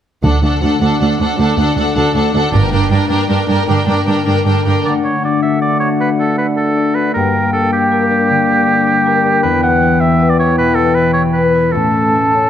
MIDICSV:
0, 0, Header, 1, 12, 480
1, 0, Start_track
1, 0, Key_signature, 2, "major"
1, 0, Tempo, 383632
1, 299, Time_signature, 12, 3, 24, 8
1, 15637, End_track
2, 0, Start_track
2, 0, Title_t, "Flute"
2, 0, Program_c, 0, 73
2, 6075, Note_on_c, 0, 78, 39
2, 8893, Note_off_c, 0, 78, 0
2, 8948, Note_on_c, 0, 79, 39
2, 14283, Note_off_c, 0, 79, 0
2, 14684, Note_on_c, 0, 81, 42
2, 15637, Note_off_c, 0, 81, 0
2, 15637, End_track
3, 0, Start_track
3, 0, Title_t, "Violin section"
3, 0, Program_c, 1, 48
3, 291, Note_on_c, 1, 78, 34
3, 526, Note_off_c, 1, 78, 0
3, 541, Note_on_c, 1, 78, 31
3, 757, Note_off_c, 1, 78, 0
3, 772, Note_on_c, 1, 78, 33
3, 1004, Note_off_c, 1, 78, 0
3, 1019, Note_on_c, 1, 78, 34
3, 1237, Note_off_c, 1, 78, 0
3, 1252, Note_on_c, 1, 78, 31
3, 1483, Note_off_c, 1, 78, 0
3, 1498, Note_on_c, 1, 78, 34
3, 1718, Note_off_c, 1, 78, 0
3, 1733, Note_on_c, 1, 78, 40
3, 1958, Note_off_c, 1, 78, 0
3, 1973, Note_on_c, 1, 78, 41
3, 2203, Note_off_c, 1, 78, 0
3, 2218, Note_on_c, 1, 78, 39
3, 2429, Note_off_c, 1, 78, 0
3, 2444, Note_on_c, 1, 78, 44
3, 2685, Note_off_c, 1, 78, 0
3, 2701, Note_on_c, 1, 78, 40
3, 2919, Note_off_c, 1, 78, 0
3, 2934, Note_on_c, 1, 78, 45
3, 3167, Note_off_c, 1, 78, 0
3, 3175, Note_on_c, 1, 79, 45
3, 3398, Note_off_c, 1, 79, 0
3, 3413, Note_on_c, 1, 79, 44
3, 3633, Note_off_c, 1, 79, 0
3, 3648, Note_on_c, 1, 79, 42
3, 3863, Note_off_c, 1, 79, 0
3, 3878, Note_on_c, 1, 79, 45
3, 4113, Note_off_c, 1, 79, 0
3, 4128, Note_on_c, 1, 79, 38
3, 4348, Note_off_c, 1, 79, 0
3, 4363, Note_on_c, 1, 79, 41
3, 4586, Note_off_c, 1, 79, 0
3, 4601, Note_on_c, 1, 79, 43
3, 4838, Note_off_c, 1, 79, 0
3, 4853, Note_on_c, 1, 79, 39
3, 5076, Note_off_c, 1, 79, 0
3, 5091, Note_on_c, 1, 79, 34
3, 5323, Note_off_c, 1, 79, 0
3, 5338, Note_on_c, 1, 79, 41
3, 5566, Note_off_c, 1, 79, 0
3, 5581, Note_on_c, 1, 79, 30
3, 5810, Note_off_c, 1, 79, 0
3, 5825, Note_on_c, 1, 79, 32
3, 6064, Note_off_c, 1, 79, 0
3, 15637, End_track
4, 0, Start_track
4, 0, Title_t, "Oboe"
4, 0, Program_c, 2, 68
4, 6071, Note_on_c, 2, 74, 54
4, 6179, Note_off_c, 2, 74, 0
4, 6309, Note_on_c, 2, 73, 52
4, 6546, Note_off_c, 2, 73, 0
4, 6563, Note_on_c, 2, 74, 51
4, 6781, Note_off_c, 2, 74, 0
4, 6788, Note_on_c, 2, 76, 55
4, 7019, Note_off_c, 2, 76, 0
4, 7026, Note_on_c, 2, 74, 57
4, 7248, Note_off_c, 2, 74, 0
4, 7256, Note_on_c, 2, 73, 50
4, 7367, Note_off_c, 2, 73, 0
4, 7515, Note_on_c, 2, 71, 54
4, 7621, Note_off_c, 2, 71, 0
4, 7753, Note_on_c, 2, 69, 52
4, 7973, Note_off_c, 2, 69, 0
4, 7981, Note_on_c, 2, 71, 51
4, 8089, Note_off_c, 2, 71, 0
4, 8212, Note_on_c, 2, 69, 53
4, 8695, Note_on_c, 2, 71, 58
4, 8713, Note_off_c, 2, 69, 0
4, 8924, Note_off_c, 2, 71, 0
4, 8932, Note_on_c, 2, 70, 59
4, 9405, Note_off_c, 2, 70, 0
4, 9418, Note_on_c, 2, 69, 60
4, 9653, Note_off_c, 2, 69, 0
4, 9669, Note_on_c, 2, 67, 67
4, 11768, Note_off_c, 2, 67, 0
4, 11797, Note_on_c, 2, 71, 73
4, 12035, Note_off_c, 2, 71, 0
4, 12053, Note_on_c, 2, 78, 76
4, 12519, Note_on_c, 2, 76, 64
4, 12538, Note_off_c, 2, 78, 0
4, 12879, Note_on_c, 2, 74, 64
4, 12898, Note_off_c, 2, 76, 0
4, 12998, Note_off_c, 2, 74, 0
4, 13004, Note_on_c, 2, 73, 67
4, 13230, Note_off_c, 2, 73, 0
4, 13237, Note_on_c, 2, 71, 74
4, 13449, Note_on_c, 2, 69, 66
4, 13468, Note_off_c, 2, 71, 0
4, 13697, Note_on_c, 2, 71, 64
4, 13715, Note_off_c, 2, 69, 0
4, 13924, Note_off_c, 2, 71, 0
4, 13932, Note_on_c, 2, 73, 63
4, 14046, Note_off_c, 2, 73, 0
4, 14170, Note_on_c, 2, 71, 60
4, 14663, Note_on_c, 2, 69, 57
4, 14682, Note_off_c, 2, 71, 0
4, 15637, Note_off_c, 2, 69, 0
4, 15637, End_track
5, 0, Start_track
5, 0, Title_t, "Violin section"
5, 0, Program_c, 3, 48
5, 301, Note_on_c, 3, 69, 32
5, 538, Note_off_c, 3, 69, 0
5, 556, Note_on_c, 3, 69, 31
5, 785, Note_off_c, 3, 69, 0
5, 804, Note_on_c, 3, 69, 33
5, 1017, Note_off_c, 3, 69, 0
5, 1032, Note_on_c, 3, 69, 37
5, 1264, Note_off_c, 3, 69, 0
5, 1279, Note_on_c, 3, 69, 34
5, 1505, Note_off_c, 3, 69, 0
5, 1520, Note_on_c, 3, 69, 41
5, 1747, Note_off_c, 3, 69, 0
5, 1764, Note_on_c, 3, 69, 43
5, 1988, Note_off_c, 3, 69, 0
5, 2007, Note_on_c, 3, 69, 40
5, 2225, Note_off_c, 3, 69, 0
5, 2240, Note_on_c, 3, 69, 41
5, 2449, Note_off_c, 3, 69, 0
5, 2464, Note_on_c, 3, 69, 45
5, 2695, Note_off_c, 3, 69, 0
5, 2709, Note_on_c, 3, 69, 42
5, 2930, Note_off_c, 3, 69, 0
5, 2945, Note_on_c, 3, 69, 42
5, 3173, Note_off_c, 3, 69, 0
5, 3199, Note_on_c, 3, 70, 50
5, 3412, Note_off_c, 3, 70, 0
5, 3427, Note_on_c, 3, 70, 43
5, 3651, Note_off_c, 3, 70, 0
5, 3665, Note_on_c, 3, 70, 47
5, 3869, Note_off_c, 3, 70, 0
5, 3884, Note_on_c, 3, 70, 50
5, 4116, Note_off_c, 3, 70, 0
5, 4131, Note_on_c, 3, 70, 41
5, 4358, Note_off_c, 3, 70, 0
5, 4373, Note_on_c, 3, 70, 50
5, 4602, Note_off_c, 3, 70, 0
5, 4617, Note_on_c, 3, 70, 41
5, 4844, Note_off_c, 3, 70, 0
5, 4859, Note_on_c, 3, 70, 36
5, 5091, Note_off_c, 3, 70, 0
5, 5110, Note_on_c, 3, 70, 39
5, 5322, Note_off_c, 3, 70, 0
5, 5337, Note_on_c, 3, 70, 37
5, 5575, Note_off_c, 3, 70, 0
5, 5599, Note_on_c, 3, 70, 34
5, 5830, Note_off_c, 3, 70, 0
5, 5854, Note_on_c, 3, 70, 30
5, 6078, Note_off_c, 3, 70, 0
5, 15637, End_track
6, 0, Start_track
6, 0, Title_t, "Harp"
6, 0, Program_c, 4, 46
6, 304, Note_on_c, 4, 50, 34
6, 552, Note_on_c, 4, 62, 29
6, 796, Note_on_c, 4, 66, 32
6, 1014, Note_off_c, 4, 62, 0
6, 1029, Note_on_c, 4, 62, 29
6, 1272, Note_on_c, 4, 61, 26
6, 1496, Note_off_c, 4, 62, 0
6, 1511, Note_on_c, 4, 62, 35
6, 1676, Note_off_c, 4, 61, 0
6, 1745, Note_on_c, 4, 57, 34
6, 1970, Note_off_c, 4, 62, 0
6, 1985, Note_on_c, 4, 62, 37
6, 2208, Note_off_c, 4, 66, 0
6, 2223, Note_on_c, 4, 66, 40
6, 2454, Note_off_c, 4, 62, 0
6, 2469, Note_on_c, 4, 62, 36
6, 2703, Note_on_c, 4, 61, 31
6, 2920, Note_off_c, 4, 62, 0
6, 2935, Note_on_c, 4, 62, 40
6, 3104, Note_off_c, 4, 61, 0
6, 3168, Note_on_c, 4, 43, 52
6, 3192, Note_off_c, 4, 57, 0
6, 3192, Note_off_c, 4, 66, 0
6, 3193, Note_off_c, 4, 50, 0
6, 3413, Note_on_c, 4, 58, 45
6, 3635, Note_off_c, 4, 62, 0
6, 3650, Note_on_c, 4, 62, 39
6, 3877, Note_off_c, 4, 58, 0
6, 3892, Note_on_c, 4, 58, 37
6, 4128, Note_on_c, 4, 57, 31
6, 4360, Note_off_c, 4, 58, 0
6, 4375, Note_on_c, 4, 58, 39
6, 4536, Note_off_c, 4, 57, 0
6, 4611, Note_on_c, 4, 50, 34
6, 4834, Note_off_c, 4, 58, 0
6, 4849, Note_on_c, 4, 58, 37
6, 5081, Note_off_c, 4, 62, 0
6, 5096, Note_on_c, 4, 62, 35
6, 5317, Note_off_c, 4, 58, 0
6, 5332, Note_on_c, 4, 58, 33
6, 5583, Note_on_c, 4, 57, 27
6, 5809, Note_off_c, 4, 58, 0
6, 5824, Note_on_c, 4, 58, 29
6, 5998, Note_off_c, 4, 57, 0
6, 6052, Note_off_c, 4, 50, 0
6, 6067, Note_on_c, 4, 50, 44
6, 6085, Note_off_c, 4, 43, 0
6, 6087, Note_off_c, 4, 58, 0
6, 6299, Note_off_c, 4, 62, 0
6, 6314, Note_on_c, 4, 62, 32
6, 6550, Note_on_c, 4, 66, 31
6, 6792, Note_on_c, 4, 69, 30
6, 7026, Note_on_c, 4, 74, 33
6, 7257, Note_off_c, 4, 66, 0
6, 7272, Note_on_c, 4, 66, 35
6, 7510, Note_on_c, 4, 57, 31
6, 7735, Note_off_c, 4, 62, 0
6, 7750, Note_on_c, 4, 62, 32
6, 7975, Note_off_c, 4, 66, 0
6, 7990, Note_on_c, 4, 66, 31
6, 8216, Note_off_c, 4, 69, 0
6, 8232, Note_on_c, 4, 69, 39
6, 8449, Note_off_c, 4, 74, 0
6, 8464, Note_on_c, 4, 74, 32
6, 8689, Note_off_c, 4, 66, 0
6, 8704, Note_on_c, 4, 66, 36
6, 8948, Note_on_c, 4, 43, 45
6, 8958, Note_off_c, 4, 50, 0
6, 8959, Note_off_c, 4, 57, 0
6, 8960, Note_off_c, 4, 66, 0
6, 8962, Note_off_c, 4, 69, 0
6, 9198, Note_on_c, 4, 58, 36
6, 9405, Note_off_c, 4, 62, 0
6, 9420, Note_on_c, 4, 62, 34
6, 9663, Note_on_c, 4, 67, 39
6, 9901, Note_on_c, 4, 70, 37
6, 10130, Note_off_c, 4, 62, 0
6, 10145, Note_on_c, 4, 62, 44
6, 10383, Note_on_c, 4, 50, 38
6, 10605, Note_off_c, 4, 58, 0
6, 10835, Note_off_c, 4, 62, 0
6, 10850, Note_on_c, 4, 62, 42
6, 11077, Note_off_c, 4, 67, 0
6, 11092, Note_on_c, 4, 67, 42
6, 11314, Note_off_c, 4, 70, 0
6, 11329, Note_on_c, 4, 70, 45
6, 11556, Note_off_c, 4, 62, 0
6, 11571, Note_on_c, 4, 62, 43
6, 11803, Note_on_c, 4, 40, 54
6, 11826, Note_off_c, 4, 70, 0
6, 11826, Note_off_c, 4, 74, 0
6, 11827, Note_off_c, 4, 62, 0
6, 11829, Note_off_c, 4, 43, 0
6, 11830, Note_off_c, 4, 50, 0
6, 12045, Note_on_c, 4, 59, 46
6, 12286, Note_on_c, 4, 64, 44
6, 12508, Note_off_c, 4, 67, 0
6, 12523, Note_on_c, 4, 67, 42
6, 12752, Note_on_c, 4, 71, 42
6, 12989, Note_off_c, 4, 64, 0
6, 13004, Note_on_c, 4, 64, 44
6, 13241, Note_on_c, 4, 47, 37
6, 13468, Note_off_c, 4, 59, 0
6, 13483, Note_on_c, 4, 59, 39
6, 13709, Note_off_c, 4, 64, 0
6, 13724, Note_on_c, 4, 64, 38
6, 13954, Note_off_c, 4, 67, 0
6, 13969, Note_on_c, 4, 67, 42
6, 14195, Note_off_c, 4, 71, 0
6, 14210, Note_on_c, 4, 71, 36
6, 14430, Note_off_c, 4, 64, 0
6, 14445, Note_on_c, 4, 64, 34
6, 14699, Note_on_c, 4, 45, 45
6, 14701, Note_off_c, 4, 40, 0
6, 14705, Note_off_c, 4, 47, 0
6, 14706, Note_off_c, 4, 59, 0
6, 14709, Note_off_c, 4, 67, 0
6, 14709, Note_off_c, 4, 71, 0
6, 14938, Note_on_c, 4, 61, 35
6, 15173, Note_off_c, 4, 64, 0
6, 15188, Note_on_c, 4, 64, 32
6, 15430, Note_on_c, 4, 69, 33
6, 15637, Note_off_c, 4, 45, 0
6, 15637, Note_off_c, 4, 61, 0
6, 15637, Note_off_c, 4, 64, 0
6, 15637, Note_off_c, 4, 69, 0
6, 15637, End_track
7, 0, Start_track
7, 0, Title_t, "Viola section"
7, 0, Program_c, 5, 48
7, 302, Note_on_c, 5, 62, 33
7, 538, Note_off_c, 5, 62, 0
7, 551, Note_on_c, 5, 62, 31
7, 783, Note_off_c, 5, 62, 0
7, 796, Note_on_c, 5, 62, 33
7, 1004, Note_off_c, 5, 62, 0
7, 1019, Note_on_c, 5, 62, 35
7, 1251, Note_off_c, 5, 62, 0
7, 1266, Note_on_c, 5, 62, 35
7, 1493, Note_off_c, 5, 62, 0
7, 1508, Note_on_c, 5, 62, 33
7, 1727, Note_off_c, 5, 62, 0
7, 1742, Note_on_c, 5, 62, 42
7, 1970, Note_off_c, 5, 62, 0
7, 1985, Note_on_c, 5, 62, 38
7, 2199, Note_off_c, 5, 62, 0
7, 2214, Note_on_c, 5, 62, 38
7, 2434, Note_off_c, 5, 62, 0
7, 2449, Note_on_c, 5, 62, 44
7, 2665, Note_off_c, 5, 62, 0
7, 2680, Note_on_c, 5, 62, 37
7, 2918, Note_off_c, 5, 62, 0
7, 2933, Note_on_c, 5, 62, 46
7, 3138, Note_off_c, 5, 62, 0
7, 3153, Note_on_c, 5, 62, 45
7, 3380, Note_off_c, 5, 62, 0
7, 3395, Note_on_c, 5, 62, 43
7, 3619, Note_off_c, 5, 62, 0
7, 3634, Note_on_c, 5, 62, 46
7, 3849, Note_off_c, 5, 62, 0
7, 3864, Note_on_c, 5, 62, 48
7, 4098, Note_off_c, 5, 62, 0
7, 4113, Note_on_c, 5, 62, 43
7, 4341, Note_off_c, 5, 62, 0
7, 4356, Note_on_c, 5, 62, 36
7, 4578, Note_off_c, 5, 62, 0
7, 4593, Note_on_c, 5, 62, 44
7, 4825, Note_off_c, 5, 62, 0
7, 4840, Note_on_c, 5, 62, 43
7, 5067, Note_off_c, 5, 62, 0
7, 5082, Note_on_c, 5, 62, 37
7, 5314, Note_off_c, 5, 62, 0
7, 5329, Note_on_c, 5, 62, 40
7, 5556, Note_off_c, 5, 62, 0
7, 5571, Note_on_c, 5, 62, 33
7, 5807, Note_off_c, 5, 62, 0
7, 5822, Note_on_c, 5, 62, 30
7, 6062, Note_off_c, 5, 62, 0
7, 15637, End_track
8, 0, Start_track
8, 0, Title_t, "Clarinet"
8, 0, Program_c, 6, 71
8, 6080, Note_on_c, 6, 57, 42
8, 8946, Note_on_c, 6, 58, 51
8, 8965, Note_off_c, 6, 57, 0
8, 11809, Note_off_c, 6, 58, 0
8, 11816, Note_on_c, 6, 59, 53
8, 14283, Note_off_c, 6, 59, 0
8, 14675, Note_on_c, 6, 61, 49
8, 15637, Note_off_c, 6, 61, 0
8, 15637, End_track
9, 0, Start_track
9, 0, Title_t, "French horn section"
9, 0, Program_c, 7, 60
9, 6059, Note_on_c, 7, 62, 41
9, 8885, Note_off_c, 7, 62, 0
9, 8932, Note_on_c, 7, 55, 45
9, 11753, Note_off_c, 7, 55, 0
9, 11819, Note_on_c, 7, 52, 50
9, 14687, Note_on_c, 7, 57, 41
9, 14690, Note_off_c, 7, 52, 0
9, 15194, Note_off_c, 7, 57, 0
9, 15399, Note_on_c, 7, 61, 53
9, 15633, Note_off_c, 7, 61, 0
9, 15637, End_track
10, 0, Start_track
10, 0, Title_t, "Timpani"
10, 0, Program_c, 8, 47
10, 294, Note_on_c, 8, 50, 41
10, 971, Note_off_c, 8, 50, 0
10, 15637, End_track
11, 0, Start_track
11, 0, Title_t, "Cello section"
11, 0, Program_c, 10, 48
11, 293, Note_on_c, 10, 38, 34
11, 391, Note_off_c, 10, 38, 0
11, 537, Note_on_c, 10, 38, 34
11, 634, Note_off_c, 10, 38, 0
11, 785, Note_on_c, 10, 38, 34
11, 880, Note_off_c, 10, 38, 0
11, 1020, Note_on_c, 10, 38, 37
11, 1117, Note_off_c, 10, 38, 0
11, 1260, Note_on_c, 10, 38, 39
11, 1357, Note_off_c, 10, 38, 0
11, 1499, Note_on_c, 10, 38, 37
11, 1596, Note_off_c, 10, 38, 0
11, 1731, Note_on_c, 10, 38, 47
11, 1829, Note_off_c, 10, 38, 0
11, 1977, Note_on_c, 10, 38, 44
11, 2074, Note_off_c, 10, 38, 0
11, 2213, Note_on_c, 10, 38, 48
11, 2310, Note_off_c, 10, 38, 0
11, 2458, Note_on_c, 10, 38, 46
11, 2554, Note_off_c, 10, 38, 0
11, 2693, Note_on_c, 10, 38, 48
11, 2789, Note_off_c, 10, 38, 0
11, 2927, Note_on_c, 10, 38, 49
11, 3023, Note_off_c, 10, 38, 0
11, 3169, Note_on_c, 10, 43, 50
11, 3264, Note_off_c, 10, 43, 0
11, 3403, Note_on_c, 10, 43, 50
11, 3499, Note_off_c, 10, 43, 0
11, 3633, Note_on_c, 10, 43, 51
11, 3731, Note_off_c, 10, 43, 0
11, 3870, Note_on_c, 10, 43, 49
11, 3968, Note_off_c, 10, 43, 0
11, 4114, Note_on_c, 10, 43, 45
11, 4212, Note_off_c, 10, 43, 0
11, 4352, Note_on_c, 10, 43, 45
11, 4451, Note_off_c, 10, 43, 0
11, 4602, Note_on_c, 10, 43, 52
11, 4700, Note_off_c, 10, 43, 0
11, 4841, Note_on_c, 10, 43, 46
11, 4939, Note_off_c, 10, 43, 0
11, 5096, Note_on_c, 10, 43, 44
11, 5192, Note_off_c, 10, 43, 0
11, 5333, Note_on_c, 10, 43, 39
11, 5431, Note_off_c, 10, 43, 0
11, 5574, Note_on_c, 10, 43, 37
11, 5673, Note_off_c, 10, 43, 0
11, 5819, Note_on_c, 10, 43, 34
11, 5917, Note_off_c, 10, 43, 0
11, 15637, End_track
12, 0, Start_track
12, 0, Title_t, "Double bass section"
12, 0, Program_c, 11, 48
12, 304, Note_on_c, 11, 38, 39
12, 527, Note_off_c, 11, 38, 0
12, 3179, Note_on_c, 11, 31, 58
12, 3396, Note_off_c, 11, 31, 0
12, 15637, End_track
0, 0, End_of_file